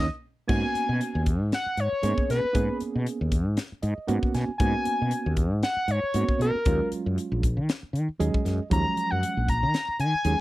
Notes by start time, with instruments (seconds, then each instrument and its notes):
0.48 fretless electric bass G#2, reed electric piano A#3 B3 C#4 F#4, analog synth lead G#5, kick, crash
0.75 muted fretless electric bass stroke, closed hi-hat
0.89 fretless electric bass B2
1.01 closed hi-hat
1.15 fretless electric bass D#2
1.26 kick, closed hi-hat
1.40 fretless electric bass G#2
1.52 analog synth lead F#5, snare, closed hi-hat
1.66 muted fretless electric bass stroke
1.77 fretless electric bass G#2, analog synth lead C#5, closed hi-hat
1.92 muted fretless electric bass stroke
2.03 fretless electric bass G#2, reed electric piano A#3 B3 C#4 G#4, closed hi-hat
2.18 kick
2.30 fretless electric bass B2, analog synth lead B4, snare, closed hi-hat
2.44 muted fretless electric bass stroke
2.53 fretless electric bass G#2, reed electric piano A#3 B3 C#4 G#4, kick, closed hi-hat
2.81 muted fretless electric bass stroke, closed hi-hat
2.95 fretless electric bass B2
3.07 closed hi-hat
3.21 fretless electric bass D#2
3.32 kick, closed hi-hat
3.46 fretless electric bass G#2
3.57 snare, closed hi-hat
3.72 muted fretless electric bass stroke
3.82 fretless electric bass G#2, reed electric piano D#5, closed hi-hat
3.98 muted fretless electric bass stroke
4.07 fretless electric bass G#2, reed electric piano A#3 B3 C#4 F#4 F#5, closed hi-hat
4.23 kick
4.34 fretless electric bass B2, reed electric piano G#5, snare, closed hi-hat
4.49 muted fretless electric bass stroke
4.58 fretless electric bass G#2, reed electric piano A#3 B3 C#4 F#4, analog synth lead G#5, kick, closed hi-hat
4.85 muted fretless electric bass stroke, closed hi-hat
5.02 fretless electric bass B2
5.11 closed hi-hat
5.26 fretless electric bass D#2
5.37 kick, closed hi-hat
5.52 fretless electric bass G#2
5.63 analog synth lead F#5, snare, closed hi-hat
5.77 muted fretless electric bass stroke
5.88 fretless electric bass G#2, analog synth lead C#5, closed hi-hat
6.03 muted fretless electric bass stroke
6.14 fretless electric bass G#2, reed electric piano A#3 B3 C#4 F#4, closed hi-hat
6.29 kick
6.39 fretless electric bass B2, analog synth lead A#4, closed hi-hat
6.55 muted fretless electric bass stroke
6.65 fretless electric bass D#2, reed electric piano F#3 G#3 C#4 F4, kick, closed hi-hat
6.92 muted fretless electric bass stroke, closed hi-hat
7.06 fretless electric bass F#2
7.18 closed hi-hat
7.32 fretless electric bass A#1
7.43 kick, closed hi-hat
7.57 fretless electric bass D#3
7.69 snare, closed hi-hat
7.83 muted fretless electric bass stroke
7.93 fretless electric bass D#3, closed hi-hat
8.09 muted fretless electric bass stroke
8.19 fretless electric bass D#2, reed electric piano F#3 G#3 C#4 G#4 D#5, closed hi-hat
8.34 muted fretless electric bass stroke, kick
8.45 fretless electric bass F#2, snare, closed hi-hat
8.59 muted fretless electric bass stroke
8.70 fretless electric bass D#2, reed electric piano F3 F#3 G#3 C#4, analog synth lead A#5, kick, closed hi-hat
8.96 muted fretless electric bass stroke, closed hi-hat
9.11 fretless electric bass F#2, analog synth lead F#5
9.23 closed hi-hat
9.37 fretless electric bass A#1
9.48 analog synth lead A#5, kick, closed hi-hat
9.63 fretless electric bass D#3
9.74 snare, closed hi-hat
9.88 muted fretless electric bass stroke
9.99 fretless electric bass D#3, analog synth lead G#5, closed hi-hat
10.14 muted fretless electric bass stroke
10.25 fretless electric bass D#2, reed electric piano F#3 G#3 C#4 G#4, closed hi-hat